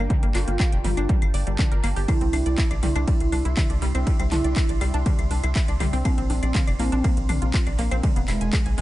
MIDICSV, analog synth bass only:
0, 0, Header, 1, 2, 480
1, 0, Start_track
1, 0, Tempo, 495868
1, 98, Time_signature, 4, 2, 24, 8
1, 8530, End_track
2, 0, Start_track
2, 0, Title_t, "Analog synth bass"
2, 0, Program_c, 0, 38
2, 221, Note_on_c, 0, 31, 86
2, 317, Note_off_c, 0, 31, 0
2, 337, Note_on_c, 0, 31, 99
2, 439, Note_off_c, 0, 31, 0
2, 461, Note_on_c, 0, 31, 96
2, 557, Note_off_c, 0, 31, 0
2, 701, Note_on_c, 0, 29, 87
2, 797, Note_off_c, 0, 29, 0
2, 817, Note_on_c, 0, 31, 97
2, 919, Note_off_c, 0, 31, 0
2, 941, Note_on_c, 0, 31, 92
2, 1037, Note_off_c, 0, 31, 0
2, 1181, Note_on_c, 0, 31, 85
2, 1277, Note_off_c, 0, 31, 0
2, 1297, Note_on_c, 0, 31, 100
2, 1399, Note_off_c, 0, 31, 0
2, 1422, Note_on_c, 0, 31, 92
2, 1517, Note_off_c, 0, 31, 0
2, 1661, Note_on_c, 0, 31, 87
2, 1757, Note_off_c, 0, 31, 0
2, 1778, Note_on_c, 0, 31, 103
2, 1880, Note_off_c, 0, 31, 0
2, 1901, Note_on_c, 0, 31, 93
2, 1997, Note_off_c, 0, 31, 0
2, 2141, Note_on_c, 0, 36, 90
2, 2237, Note_off_c, 0, 36, 0
2, 2257, Note_on_c, 0, 36, 99
2, 2359, Note_off_c, 0, 36, 0
2, 2381, Note_on_c, 0, 36, 93
2, 2477, Note_off_c, 0, 36, 0
2, 2621, Note_on_c, 0, 34, 92
2, 2717, Note_off_c, 0, 34, 0
2, 2737, Note_on_c, 0, 36, 99
2, 2839, Note_off_c, 0, 36, 0
2, 2861, Note_on_c, 0, 36, 96
2, 2957, Note_off_c, 0, 36, 0
2, 3101, Note_on_c, 0, 36, 87
2, 3197, Note_off_c, 0, 36, 0
2, 3217, Note_on_c, 0, 36, 102
2, 3319, Note_off_c, 0, 36, 0
2, 3342, Note_on_c, 0, 36, 94
2, 3437, Note_off_c, 0, 36, 0
2, 3582, Note_on_c, 0, 36, 88
2, 3677, Note_off_c, 0, 36, 0
2, 3698, Note_on_c, 0, 36, 102
2, 3800, Note_off_c, 0, 36, 0
2, 3822, Note_on_c, 0, 36, 93
2, 3917, Note_off_c, 0, 36, 0
2, 4062, Note_on_c, 0, 36, 90
2, 4157, Note_off_c, 0, 36, 0
2, 4178, Note_on_c, 0, 36, 100
2, 4280, Note_off_c, 0, 36, 0
2, 4301, Note_on_c, 0, 36, 96
2, 4397, Note_off_c, 0, 36, 0
2, 4541, Note_on_c, 0, 34, 91
2, 4637, Note_off_c, 0, 34, 0
2, 4658, Note_on_c, 0, 36, 101
2, 4760, Note_off_c, 0, 36, 0
2, 4781, Note_on_c, 0, 36, 95
2, 4877, Note_off_c, 0, 36, 0
2, 5021, Note_on_c, 0, 36, 89
2, 5117, Note_off_c, 0, 36, 0
2, 5137, Note_on_c, 0, 36, 100
2, 5239, Note_off_c, 0, 36, 0
2, 5262, Note_on_c, 0, 36, 96
2, 5357, Note_off_c, 0, 36, 0
2, 5502, Note_on_c, 0, 36, 88
2, 5597, Note_off_c, 0, 36, 0
2, 5617, Note_on_c, 0, 36, 100
2, 5720, Note_off_c, 0, 36, 0
2, 5741, Note_on_c, 0, 36, 90
2, 5837, Note_off_c, 0, 36, 0
2, 5981, Note_on_c, 0, 34, 88
2, 6077, Note_off_c, 0, 34, 0
2, 6097, Note_on_c, 0, 34, 101
2, 6199, Note_off_c, 0, 34, 0
2, 6221, Note_on_c, 0, 34, 96
2, 6317, Note_off_c, 0, 34, 0
2, 6461, Note_on_c, 0, 29, 87
2, 6557, Note_off_c, 0, 29, 0
2, 6578, Note_on_c, 0, 34, 103
2, 6679, Note_off_c, 0, 34, 0
2, 6702, Note_on_c, 0, 34, 94
2, 6797, Note_off_c, 0, 34, 0
2, 6942, Note_on_c, 0, 34, 90
2, 7037, Note_off_c, 0, 34, 0
2, 7057, Note_on_c, 0, 34, 102
2, 7159, Note_off_c, 0, 34, 0
2, 7181, Note_on_c, 0, 34, 98
2, 7277, Note_off_c, 0, 34, 0
2, 7421, Note_on_c, 0, 34, 89
2, 7517, Note_off_c, 0, 34, 0
2, 7537, Note_on_c, 0, 34, 102
2, 7639, Note_off_c, 0, 34, 0
2, 7661, Note_on_c, 0, 34, 95
2, 7757, Note_off_c, 0, 34, 0
2, 7901, Note_on_c, 0, 28, 91
2, 7997, Note_off_c, 0, 28, 0
2, 8017, Note_on_c, 0, 28, 100
2, 8119, Note_off_c, 0, 28, 0
2, 8141, Note_on_c, 0, 28, 94
2, 8237, Note_off_c, 0, 28, 0
2, 8381, Note_on_c, 0, 35, 89
2, 8477, Note_off_c, 0, 35, 0
2, 8497, Note_on_c, 0, 28, 102
2, 8530, Note_off_c, 0, 28, 0
2, 8530, End_track
0, 0, End_of_file